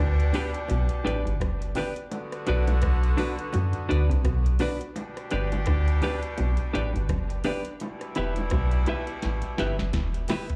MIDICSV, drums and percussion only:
0, 0, Header, 1, 2, 480
1, 0, Start_track
1, 0, Key_signature, 1, "major"
1, 0, Tempo, 711744
1, 1426, Time_signature, 4, 2, 24, 8
1, 7120, End_track
2, 0, Start_track
2, 0, Title_t, "Drums"
2, 133, Note_on_c, 9, 42, 55
2, 200, Note_off_c, 9, 42, 0
2, 223, Note_on_c, 9, 60, 50
2, 223, Note_on_c, 9, 61, 69
2, 228, Note_on_c, 9, 46, 60
2, 290, Note_off_c, 9, 60, 0
2, 290, Note_off_c, 9, 61, 0
2, 296, Note_off_c, 9, 46, 0
2, 367, Note_on_c, 9, 42, 58
2, 435, Note_off_c, 9, 42, 0
2, 461, Note_on_c, 9, 60, 75
2, 470, Note_on_c, 9, 42, 105
2, 529, Note_off_c, 9, 60, 0
2, 537, Note_off_c, 9, 42, 0
2, 600, Note_on_c, 9, 42, 58
2, 668, Note_off_c, 9, 42, 0
2, 722, Note_on_c, 9, 42, 79
2, 789, Note_off_c, 9, 42, 0
2, 856, Note_on_c, 9, 42, 44
2, 923, Note_off_c, 9, 42, 0
2, 946, Note_on_c, 9, 36, 114
2, 952, Note_on_c, 9, 42, 104
2, 954, Note_on_c, 9, 37, 112
2, 1013, Note_off_c, 9, 36, 0
2, 1019, Note_off_c, 9, 42, 0
2, 1022, Note_off_c, 9, 37, 0
2, 1091, Note_on_c, 9, 42, 59
2, 1158, Note_off_c, 9, 42, 0
2, 1181, Note_on_c, 9, 46, 87
2, 1182, Note_on_c, 9, 61, 83
2, 1248, Note_off_c, 9, 46, 0
2, 1249, Note_off_c, 9, 61, 0
2, 1323, Note_on_c, 9, 42, 64
2, 1390, Note_off_c, 9, 42, 0
2, 1426, Note_on_c, 9, 60, 80
2, 1427, Note_on_c, 9, 42, 90
2, 1494, Note_off_c, 9, 42, 0
2, 1494, Note_off_c, 9, 60, 0
2, 1567, Note_on_c, 9, 42, 59
2, 1568, Note_on_c, 9, 37, 70
2, 1635, Note_off_c, 9, 37, 0
2, 1635, Note_off_c, 9, 42, 0
2, 1663, Note_on_c, 9, 42, 91
2, 1730, Note_off_c, 9, 42, 0
2, 1804, Note_on_c, 9, 42, 56
2, 1806, Note_on_c, 9, 60, 79
2, 1871, Note_off_c, 9, 42, 0
2, 1874, Note_off_c, 9, 60, 0
2, 1899, Note_on_c, 9, 42, 98
2, 1901, Note_on_c, 9, 60, 65
2, 1907, Note_on_c, 9, 37, 127
2, 1908, Note_on_c, 9, 36, 119
2, 1966, Note_off_c, 9, 42, 0
2, 1968, Note_off_c, 9, 60, 0
2, 1974, Note_off_c, 9, 37, 0
2, 1976, Note_off_c, 9, 36, 0
2, 2046, Note_on_c, 9, 42, 51
2, 2114, Note_off_c, 9, 42, 0
2, 2138, Note_on_c, 9, 60, 53
2, 2138, Note_on_c, 9, 61, 68
2, 2144, Note_on_c, 9, 46, 59
2, 2206, Note_off_c, 9, 60, 0
2, 2206, Note_off_c, 9, 61, 0
2, 2211, Note_off_c, 9, 46, 0
2, 2284, Note_on_c, 9, 42, 57
2, 2351, Note_off_c, 9, 42, 0
2, 2378, Note_on_c, 9, 60, 80
2, 2385, Note_on_c, 9, 42, 110
2, 2446, Note_off_c, 9, 60, 0
2, 2453, Note_off_c, 9, 42, 0
2, 2517, Note_on_c, 9, 42, 58
2, 2584, Note_off_c, 9, 42, 0
2, 2637, Note_on_c, 9, 42, 79
2, 2704, Note_off_c, 9, 42, 0
2, 2773, Note_on_c, 9, 42, 47
2, 2840, Note_off_c, 9, 42, 0
2, 2862, Note_on_c, 9, 36, 118
2, 2864, Note_on_c, 9, 42, 101
2, 2866, Note_on_c, 9, 37, 118
2, 2929, Note_off_c, 9, 36, 0
2, 2931, Note_off_c, 9, 42, 0
2, 2934, Note_off_c, 9, 37, 0
2, 3008, Note_on_c, 9, 42, 61
2, 3075, Note_off_c, 9, 42, 0
2, 3096, Note_on_c, 9, 46, 92
2, 3099, Note_on_c, 9, 61, 86
2, 3163, Note_off_c, 9, 46, 0
2, 3166, Note_off_c, 9, 61, 0
2, 3243, Note_on_c, 9, 42, 67
2, 3310, Note_off_c, 9, 42, 0
2, 3343, Note_on_c, 9, 60, 81
2, 3346, Note_on_c, 9, 42, 89
2, 3411, Note_off_c, 9, 60, 0
2, 3414, Note_off_c, 9, 42, 0
2, 3487, Note_on_c, 9, 37, 72
2, 3487, Note_on_c, 9, 42, 58
2, 3554, Note_off_c, 9, 37, 0
2, 3554, Note_off_c, 9, 42, 0
2, 3578, Note_on_c, 9, 42, 96
2, 3587, Note_on_c, 9, 37, 71
2, 3646, Note_off_c, 9, 42, 0
2, 3655, Note_off_c, 9, 37, 0
2, 3723, Note_on_c, 9, 42, 54
2, 3725, Note_on_c, 9, 60, 82
2, 3790, Note_off_c, 9, 42, 0
2, 3792, Note_off_c, 9, 60, 0
2, 3815, Note_on_c, 9, 42, 106
2, 3817, Note_on_c, 9, 60, 66
2, 3823, Note_on_c, 9, 37, 127
2, 3826, Note_on_c, 9, 36, 126
2, 3883, Note_off_c, 9, 42, 0
2, 3884, Note_off_c, 9, 60, 0
2, 3890, Note_off_c, 9, 37, 0
2, 3893, Note_off_c, 9, 36, 0
2, 3964, Note_on_c, 9, 42, 55
2, 4031, Note_off_c, 9, 42, 0
2, 4058, Note_on_c, 9, 60, 55
2, 4058, Note_on_c, 9, 61, 67
2, 4059, Note_on_c, 9, 46, 60
2, 4125, Note_off_c, 9, 60, 0
2, 4125, Note_off_c, 9, 61, 0
2, 4126, Note_off_c, 9, 46, 0
2, 4199, Note_on_c, 9, 42, 59
2, 4266, Note_off_c, 9, 42, 0
2, 4300, Note_on_c, 9, 42, 99
2, 4301, Note_on_c, 9, 60, 77
2, 4367, Note_off_c, 9, 42, 0
2, 4368, Note_off_c, 9, 60, 0
2, 4431, Note_on_c, 9, 42, 55
2, 4499, Note_off_c, 9, 42, 0
2, 4553, Note_on_c, 9, 42, 85
2, 4620, Note_off_c, 9, 42, 0
2, 4692, Note_on_c, 9, 42, 45
2, 4759, Note_off_c, 9, 42, 0
2, 4781, Note_on_c, 9, 36, 114
2, 4782, Note_on_c, 9, 42, 105
2, 4785, Note_on_c, 9, 37, 121
2, 4848, Note_off_c, 9, 36, 0
2, 4850, Note_off_c, 9, 42, 0
2, 4852, Note_off_c, 9, 37, 0
2, 4924, Note_on_c, 9, 42, 58
2, 4991, Note_off_c, 9, 42, 0
2, 5016, Note_on_c, 9, 46, 93
2, 5022, Note_on_c, 9, 61, 79
2, 5083, Note_off_c, 9, 46, 0
2, 5089, Note_off_c, 9, 61, 0
2, 5157, Note_on_c, 9, 42, 59
2, 5225, Note_off_c, 9, 42, 0
2, 5261, Note_on_c, 9, 42, 89
2, 5270, Note_on_c, 9, 60, 78
2, 5328, Note_off_c, 9, 42, 0
2, 5337, Note_off_c, 9, 60, 0
2, 5402, Note_on_c, 9, 42, 61
2, 5403, Note_on_c, 9, 37, 66
2, 5470, Note_off_c, 9, 37, 0
2, 5470, Note_off_c, 9, 42, 0
2, 5497, Note_on_c, 9, 42, 96
2, 5565, Note_off_c, 9, 42, 0
2, 5638, Note_on_c, 9, 42, 59
2, 5647, Note_on_c, 9, 60, 79
2, 5705, Note_off_c, 9, 42, 0
2, 5714, Note_off_c, 9, 60, 0
2, 5733, Note_on_c, 9, 42, 99
2, 5741, Note_on_c, 9, 37, 127
2, 5744, Note_on_c, 9, 36, 125
2, 5745, Note_on_c, 9, 60, 72
2, 5801, Note_off_c, 9, 42, 0
2, 5808, Note_off_c, 9, 37, 0
2, 5811, Note_off_c, 9, 36, 0
2, 5812, Note_off_c, 9, 60, 0
2, 5877, Note_on_c, 9, 42, 52
2, 5944, Note_off_c, 9, 42, 0
2, 5978, Note_on_c, 9, 42, 80
2, 5982, Note_on_c, 9, 60, 50
2, 5982, Note_on_c, 9, 61, 72
2, 6045, Note_off_c, 9, 42, 0
2, 6049, Note_off_c, 9, 60, 0
2, 6049, Note_off_c, 9, 61, 0
2, 6118, Note_on_c, 9, 42, 62
2, 6185, Note_off_c, 9, 42, 0
2, 6221, Note_on_c, 9, 42, 110
2, 6223, Note_on_c, 9, 38, 64
2, 6223, Note_on_c, 9, 60, 76
2, 6288, Note_off_c, 9, 42, 0
2, 6290, Note_off_c, 9, 38, 0
2, 6290, Note_off_c, 9, 60, 0
2, 6351, Note_on_c, 9, 42, 59
2, 6419, Note_off_c, 9, 42, 0
2, 6463, Note_on_c, 9, 38, 85
2, 6469, Note_on_c, 9, 42, 84
2, 6530, Note_off_c, 9, 38, 0
2, 6537, Note_off_c, 9, 42, 0
2, 6604, Note_on_c, 9, 38, 75
2, 6608, Note_on_c, 9, 42, 45
2, 6672, Note_off_c, 9, 38, 0
2, 6675, Note_off_c, 9, 42, 0
2, 6698, Note_on_c, 9, 42, 101
2, 6700, Note_on_c, 9, 36, 115
2, 6702, Note_on_c, 9, 38, 98
2, 6766, Note_off_c, 9, 42, 0
2, 6767, Note_off_c, 9, 36, 0
2, 6769, Note_off_c, 9, 38, 0
2, 6841, Note_on_c, 9, 42, 58
2, 6908, Note_off_c, 9, 42, 0
2, 6932, Note_on_c, 9, 46, 93
2, 6943, Note_on_c, 9, 38, 111
2, 6944, Note_on_c, 9, 61, 84
2, 7000, Note_off_c, 9, 46, 0
2, 7011, Note_off_c, 9, 38, 0
2, 7012, Note_off_c, 9, 61, 0
2, 7078, Note_on_c, 9, 42, 61
2, 7080, Note_on_c, 9, 43, 98
2, 7120, Note_off_c, 9, 42, 0
2, 7120, Note_off_c, 9, 43, 0
2, 7120, End_track
0, 0, End_of_file